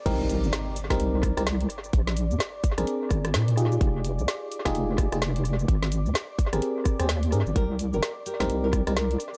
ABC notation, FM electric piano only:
X:1
M:4/4
L:1/16
Q:"Swing 16ths" 1/4=128
K:Cm
V:1 name="FM electric piano"
[CEGB]6 z [CEGB]4 [CEGB] z4 | z6 z [CDAB]6- [CDAB] [EFGA]2- | [EFGA]6- [EFGA] [EFGA]4 [EFGA] z4 | z6 z [CGAB]4 [CGAc] z2 [CGAB] z |
z6 z [CEGB]4 [CEGB] z4 |]